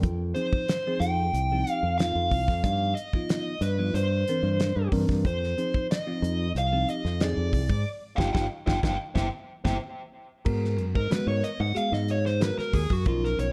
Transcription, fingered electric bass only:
0.03 0.32 F2 medium
1.00 1.30 F2 medium
1.33 1.63 C2 medium
1.83 2.12 F2 medium
2.15 2.30 F2 medium
2.31 2.46 C2 medium
2.48 2.62 F2 medium
2.64 2.93 G2 medium
3.61 3.90 G2 medium
3.94 4.23 G2 medium
4.43 4.72 G2 medium
4.76 4.90 G2 medium
4.92 5.07 G2 medium
5.09 5.23 G2 medium
5.25 5.54 F2 medium
6.22 6.51 F2 medium
6.55 6.84 C2 medium
7.05 7.33 F2 medium
7.37 7.51 F2 medium
7.53 7.68 C2 medium
7.70 7.84 G#2 medium
8.18 8.31 G1 medium
8.35 8.47 G1 medium
8.68 8.79 G1 medium
8.84 8.96 G1 medium
9.16 9.28 G1 medium
9.65 9.77 G1 medium
10.46 10.79 G#2 medium
10.79 10.93 F#2 medium
10.96 11.09 G#2 medium
11.11 muted fingered electric bass stroke soft
11.27 11.41 G#2 medium
11.60 11.74 G#2 medium
11.77 muted fingered electric bass stroke soft
11.92 12.50 G#2 medium
12.58 muted fingered electric bass stroke soft
12.74 12.88 D#2 medium
12.91 13.04 F#2 medium
13.06 13.35 B1 medium
13.39 13.52 B1 medium

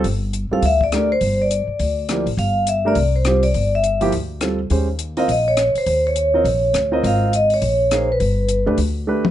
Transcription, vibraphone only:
0.53 0.63 F5 medium
0.66 0.82 E5 medium
0.84 1.12 D5 medium
1.12 1.41 C5 medium
1.42 2.24 D5 medium
2.39 2.65 F5 medium
2.69 2.88 E5 medium
2.88 3.14 D5 medium
3.16 3.41 C5 medium
3.43 3.73 D5 medium
3.75 4.01 E5 medium
5.20 5.30 F5 medium
5.32 5.48 D#5 medium
5.48 5.74 C#5 medium
5.78 6.07 C5 medium
6.07 6.89 C#5 medium
7.07 7.32 F5 medium
7.36 7.54 D#5 medium
7.54 7.93 C#5 medium
7.95 8.11 C5 medium
8.12 8.64 B4 medium

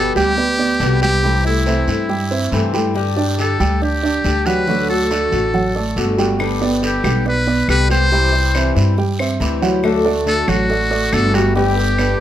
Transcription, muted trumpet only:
0.00 0.15 A4 loud
0.16 0.98 G4 loud
1.02 1.42 G4 loud
1.46 2.71 E4 medium
3.40 3.79 A4 medium
3.83 4.48 G4 medium
4.46 4.89 B4 loud
4.90 6.15 A4 medium
6.85 7.24 G4 medium
7.28 7.67 B4 medium
7.70 7.89 B4 loud
7.91 8.73 C5 loud
10.28 10.50 A4 loud
10.49 11.15 F#4 loud
11.13 11.36 A4 loud
11.34 11.55 F#4 medium
11.56 12.20 G4 medium

